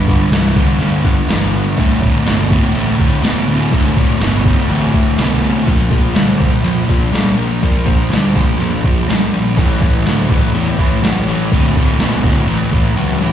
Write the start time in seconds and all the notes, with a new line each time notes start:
Already playing: G1
0.08 G2 D3, kick
0.31 C2 G2 E3, snare, open hi-hat
0.56 G2 D3, kick
0.80 D2 G2 D3, open hi-hat
1.04 G1 G2 D3, kick
1.28 G1 G2 E3, snare, open hi-hat
1.53 G2 D3
1.76 D1 D2 A2, kick, open hi-hat
2.01 D2 A2, kick
2.25 G1 D2 B2, snare, open hi-hat
2.50 D2 A2, kick
2.74 A1 D2 A2, open hi-hat
2.98 D1 D2 A2, kick
3.22 D1 D2 B2, snare, open hi-hat
3.48 D2 A2
3.72 D1 D2 A2, kick, open hi-hat
3.97 D2 A2, kick
4.20 G1 D2 B2, snare, open hi-hat
4.45 D2 A2, kick
4.69 A1 D2 A2, open hi-hat
4.92 D1 D2 A2, kick
5.18 C2 D2 B2, snare, open hi-hat
5.42 D2 A2
5.66 A#1 A#2 F3, kick, open hi-hat
5.91 A#2 F3, kick
6.14 D2 A#2 G3, snare, open hi-hat
6.40 A#2 F3, kick
6.64 F2 A#2 F3, open hi-hat
6.88 A#1 A#2 F3, kick
7.12 A#1 A#2 G3, snare, open hi-hat
7.37 A#2 F3
7.62 A#1 A#2 F3, kick, open hi-hat
7.85 A#2 F3, kick
8.10 D2 A#2 G3, snare, open hi-hat
8.35 A#2 F3, kick
8.59 F2 A#2 F3, open hi-hat
8.84 A#1 A#2 F3, kick
9.08 A#1 A#2 G3, snare, open hi-hat
9.33 A#2 F3
9.57 A1 A2 E3, kick, open hi-hat
9.82 A2 E3, kick
10.05 D2 A2 F#3, snare, open hi-hat
10.30 A2 E3, kick
10.54 E2 A2 E3, open hi-hat
10.79 A1 A2 E3, kick
11.02 A1 A2 F#3, snare, open hi-hat
11.27 A2 E3
11.51 D1 D2 A2, kick, open hi-hat
11.75 D2 A2, kick
11.99 A#1 D2 B2, snare, open hi-hat
12.23 D2 A2, kick
12.47 A1 A2 E3, open hi-hat
12.71 A1 A2 E3, kick
12.96 C#2 A2 F#3, open hi-hat
13.21 A2 E3